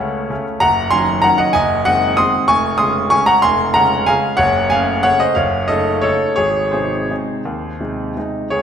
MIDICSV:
0, 0, Header, 1, 2, 480
1, 0, Start_track
1, 0, Tempo, 315789
1, 936, Time_signature, 3, 2, 24, 8
1, 7176, Tempo, 335758
1, 10056, Tempo, 351906
1, 12626, End_track
2, 0, Start_track
2, 0, Title_t, "Grand piano"
2, 0, Program_c, 0, 0
2, 0, Control_c, 0, 64, 127
2, 0, Note_on_c, 0, 37, 75
2, 0, Note_on_c, 0, 49, 56
2, 0, Note_on_c, 0, 57, 56
2, 0, Note_on_c, 0, 61, 59
2, 0, Note_on_c, 0, 73, 81
2, 0, Note_on_c, 0, 78, 109
2, 410, Note_off_c, 0, 49, 0
2, 410, Note_off_c, 0, 57, 0
2, 413, Note_off_c, 0, 61, 0
2, 454, Note_on_c, 0, 49, 56
2, 460, Note_on_c, 0, 61, 64
2, 467, Note_on_c, 0, 57, 61
2, 482, Control_c, 0, 64, 0
2, 491, Note_off_c, 0, 37, 0
2, 629, Note_off_c, 0, 73, 0
2, 681, Note_off_c, 0, 78, 0
2, 885, Note_off_c, 0, 49, 0
2, 889, Note_off_c, 0, 61, 0
2, 893, Note_off_c, 0, 57, 0
2, 917, Note_on_c, 0, 82, 127
2, 929, Note_on_c, 0, 78, 103
2, 947, Note_on_c, 0, 30, 80
2, 1229, Control_c, 0, 64, 127
2, 1368, Note_off_c, 0, 78, 0
2, 1376, Note_on_c, 0, 84, 122
2, 1389, Note_on_c, 0, 80, 88
2, 1395, Note_off_c, 0, 82, 0
2, 1396, Note_off_c, 0, 30, 0
2, 1404, Note_on_c, 0, 51, 59
2, 1405, Note_on_c, 0, 54, 59
2, 1411, Note_on_c, 0, 61, 65
2, 1840, Note_off_c, 0, 51, 0
2, 1841, Note_off_c, 0, 54, 0
2, 1844, Note_off_c, 0, 61, 0
2, 1846, Note_off_c, 0, 80, 0
2, 1849, Note_on_c, 0, 82, 117
2, 1875, Note_off_c, 0, 84, 0
2, 1881, Note_on_c, 0, 78, 102
2, 1884, Note_on_c, 0, 51, 63
2, 1890, Note_on_c, 0, 54, 60
2, 1896, Note_on_c, 0, 61, 69
2, 1912, Control_c, 0, 64, 0
2, 2073, Note_off_c, 0, 78, 0
2, 2095, Note_on_c, 0, 78, 106
2, 2109, Note_off_c, 0, 82, 0
2, 2117, Note_on_c, 0, 75, 89
2, 2310, Note_off_c, 0, 51, 0
2, 2314, Note_off_c, 0, 54, 0
2, 2317, Note_off_c, 0, 61, 0
2, 2326, Note_on_c, 0, 80, 126
2, 2327, Note_off_c, 0, 75, 0
2, 2344, Note_off_c, 0, 78, 0
2, 2350, Note_on_c, 0, 75, 103
2, 2359, Note_on_c, 0, 30, 84
2, 2632, Control_c, 0, 64, 127
2, 2789, Note_off_c, 0, 75, 0
2, 2810, Note_off_c, 0, 80, 0
2, 2812, Note_off_c, 0, 30, 0
2, 2816, Note_on_c, 0, 78, 126
2, 2827, Note_on_c, 0, 75, 97
2, 2838, Note_on_c, 0, 51, 60
2, 2851, Note_on_c, 0, 56, 58
2, 2853, Note_on_c, 0, 60, 63
2, 3265, Note_off_c, 0, 51, 0
2, 3272, Note_off_c, 0, 56, 0
2, 3273, Note_off_c, 0, 60, 0
2, 3273, Note_off_c, 0, 75, 0
2, 3296, Note_on_c, 0, 87, 127
2, 3301, Note_off_c, 0, 78, 0
2, 3319, Note_on_c, 0, 84, 100
2, 3329, Note_on_c, 0, 60, 67
2, 3330, Control_c, 0, 64, 0
2, 3330, Note_on_c, 0, 51, 59
2, 3333, Note_on_c, 0, 56, 64
2, 3751, Note_off_c, 0, 51, 0
2, 3751, Note_off_c, 0, 60, 0
2, 3753, Note_off_c, 0, 56, 0
2, 3759, Note_off_c, 0, 84, 0
2, 3767, Note_on_c, 0, 85, 127
2, 3781, Note_off_c, 0, 87, 0
2, 3783, Note_on_c, 0, 80, 103
2, 3791, Note_on_c, 0, 29, 86
2, 4056, Control_c, 0, 64, 127
2, 4221, Note_on_c, 0, 87, 124
2, 4224, Note_off_c, 0, 80, 0
2, 4236, Note_on_c, 0, 84, 90
2, 4244, Note_on_c, 0, 49, 56
2, 4245, Note_on_c, 0, 56, 66
2, 4247, Note_off_c, 0, 29, 0
2, 4249, Note_off_c, 0, 85, 0
2, 4262, Note_on_c, 0, 61, 63
2, 4688, Note_off_c, 0, 49, 0
2, 4688, Note_off_c, 0, 56, 0
2, 4697, Note_off_c, 0, 61, 0
2, 4698, Note_off_c, 0, 84, 0
2, 4714, Note_on_c, 0, 85, 127
2, 4725, Note_off_c, 0, 87, 0
2, 4736, Note_on_c, 0, 80, 97
2, 4747, Note_on_c, 0, 49, 61
2, 4750, Note_on_c, 0, 56, 62
2, 4761, Control_c, 0, 64, 0
2, 4764, Note_on_c, 0, 61, 69
2, 4959, Note_on_c, 0, 82, 123
2, 4966, Note_off_c, 0, 80, 0
2, 4973, Note_off_c, 0, 85, 0
2, 4974, Note_on_c, 0, 78, 98
2, 5178, Note_off_c, 0, 49, 0
2, 5179, Note_off_c, 0, 56, 0
2, 5187, Note_off_c, 0, 61, 0
2, 5200, Note_off_c, 0, 78, 0
2, 5202, Note_on_c, 0, 84, 124
2, 5210, Note_off_c, 0, 82, 0
2, 5227, Note_on_c, 0, 29, 88
2, 5227, Note_on_c, 0, 80, 87
2, 5499, Control_c, 0, 64, 127
2, 5666, Note_off_c, 0, 80, 0
2, 5682, Note_on_c, 0, 82, 125
2, 5685, Note_off_c, 0, 29, 0
2, 5687, Note_off_c, 0, 84, 0
2, 5703, Note_on_c, 0, 78, 97
2, 5718, Note_on_c, 0, 49, 64
2, 5718, Note_on_c, 0, 56, 66
2, 5728, Note_on_c, 0, 61, 69
2, 6156, Note_off_c, 0, 49, 0
2, 6156, Note_off_c, 0, 56, 0
2, 6162, Note_off_c, 0, 61, 0
2, 6163, Note_off_c, 0, 78, 0
2, 6177, Note_on_c, 0, 80, 115
2, 6187, Note_off_c, 0, 82, 0
2, 6190, Note_on_c, 0, 77, 92
2, 6206, Note_on_c, 0, 49, 64
2, 6207, Note_on_c, 0, 56, 64
2, 6212, Note_on_c, 0, 61, 68
2, 6217, Control_c, 0, 64, 0
2, 6638, Note_on_c, 0, 78, 120
2, 6642, Note_off_c, 0, 49, 0
2, 6643, Note_off_c, 0, 56, 0
2, 6646, Note_off_c, 0, 61, 0
2, 6649, Note_off_c, 0, 77, 0
2, 6649, Note_on_c, 0, 73, 88
2, 6665, Note_on_c, 0, 30, 89
2, 6677, Note_off_c, 0, 80, 0
2, 6938, Control_c, 0, 64, 127
2, 7122, Note_off_c, 0, 73, 0
2, 7141, Note_on_c, 0, 80, 114
2, 7150, Note_off_c, 0, 30, 0
2, 7152, Note_off_c, 0, 78, 0
2, 7165, Note_on_c, 0, 77, 94
2, 7177, Note_on_c, 0, 49, 65
2, 7179, Note_on_c, 0, 57, 56
2, 7181, Note_on_c, 0, 61, 70
2, 7605, Note_off_c, 0, 49, 0
2, 7606, Note_off_c, 0, 57, 0
2, 7607, Note_off_c, 0, 61, 0
2, 7613, Note_off_c, 0, 77, 0
2, 7618, Note_on_c, 0, 78, 120
2, 7631, Note_on_c, 0, 73, 92
2, 7636, Note_off_c, 0, 80, 0
2, 7640, Note_on_c, 0, 49, 63
2, 7645, Note_on_c, 0, 57, 53
2, 7648, Note_on_c, 0, 61, 61
2, 7672, Control_c, 0, 64, 0
2, 7857, Note_on_c, 0, 75, 109
2, 7859, Note_off_c, 0, 73, 0
2, 7864, Note_on_c, 0, 72, 79
2, 7870, Note_off_c, 0, 78, 0
2, 8061, Note_off_c, 0, 49, 0
2, 8063, Note_off_c, 0, 57, 0
2, 8065, Note_off_c, 0, 61, 0
2, 8073, Note_on_c, 0, 77, 96
2, 8085, Note_off_c, 0, 72, 0
2, 8091, Note_on_c, 0, 73, 73
2, 8095, Note_on_c, 0, 30, 81
2, 8099, Note_off_c, 0, 75, 0
2, 8400, Control_c, 0, 64, 127
2, 8539, Note_off_c, 0, 73, 0
2, 8542, Note_on_c, 0, 75, 106
2, 8556, Note_on_c, 0, 69, 79
2, 8560, Note_off_c, 0, 30, 0
2, 8564, Note_off_c, 0, 77, 0
2, 8564, Note_on_c, 0, 49, 55
2, 8575, Note_on_c, 0, 57, 53
2, 8578, Note_on_c, 0, 63, 62
2, 9014, Note_off_c, 0, 49, 0
2, 9020, Note_off_c, 0, 57, 0
2, 9021, Note_off_c, 0, 63, 0
2, 9025, Note_off_c, 0, 69, 0
2, 9026, Note_on_c, 0, 73, 98
2, 9051, Note_on_c, 0, 57, 55
2, 9051, Note_on_c, 0, 69, 82
2, 9053, Note_off_c, 0, 75, 0
2, 9053, Note_on_c, 0, 49, 57
2, 9064, Note_on_c, 0, 63, 59
2, 9096, Control_c, 0, 64, 0
2, 9493, Note_off_c, 0, 73, 0
2, 9505, Note_off_c, 0, 57, 0
2, 9506, Note_off_c, 0, 49, 0
2, 9512, Note_off_c, 0, 63, 0
2, 9514, Note_on_c, 0, 73, 104
2, 9520, Note_off_c, 0, 69, 0
2, 9533, Note_on_c, 0, 68, 83
2, 9538, Note_on_c, 0, 32, 71
2, 9870, Control_c, 0, 64, 127
2, 10003, Note_off_c, 0, 68, 0
2, 10025, Note_on_c, 0, 72, 75
2, 10026, Note_off_c, 0, 32, 0
2, 10029, Note_off_c, 0, 73, 0
2, 10043, Note_on_c, 0, 68, 57
2, 10052, Note_on_c, 0, 48, 51
2, 10058, Note_on_c, 0, 56, 53
2, 10058, Note_on_c, 0, 63, 55
2, 10505, Note_off_c, 0, 48, 0
2, 10509, Note_off_c, 0, 56, 0
2, 10509, Note_off_c, 0, 63, 0
2, 10558, Note_on_c, 0, 48, 49
2, 10565, Note_on_c, 0, 56, 50
2, 10571, Note_on_c, 0, 63, 56
2, 10574, Control_c, 0, 64, 0
2, 10991, Note_off_c, 0, 48, 0
2, 10996, Note_off_c, 0, 56, 0
2, 10999, Note_off_c, 0, 63, 0
2, 11037, Note_on_c, 0, 39, 69
2, 11342, Control_c, 0, 64, 127
2, 11499, Note_off_c, 0, 39, 0
2, 11513, Note_on_c, 0, 48, 51
2, 11518, Note_on_c, 0, 56, 49
2, 11520, Note_on_c, 0, 63, 50
2, 11941, Note_off_c, 0, 68, 0
2, 11952, Note_off_c, 0, 48, 0
2, 11954, Note_off_c, 0, 56, 0
2, 11955, Note_off_c, 0, 63, 0
2, 11987, Note_off_c, 0, 72, 0
2, 12011, Note_on_c, 0, 48, 51
2, 12013, Note_on_c, 0, 56, 49
2, 12017, Control_c, 0, 64, 0
2, 12020, Note_on_c, 0, 63, 58
2, 12429, Note_off_c, 0, 48, 0
2, 12430, Note_off_c, 0, 56, 0
2, 12434, Note_off_c, 0, 63, 0
2, 12468, Note_on_c, 0, 73, 93
2, 12480, Note_on_c, 0, 68, 69
2, 12484, Note_on_c, 0, 37, 63
2, 12626, Note_off_c, 0, 37, 0
2, 12626, Note_off_c, 0, 68, 0
2, 12626, Note_off_c, 0, 73, 0
2, 12626, End_track
0, 0, End_of_file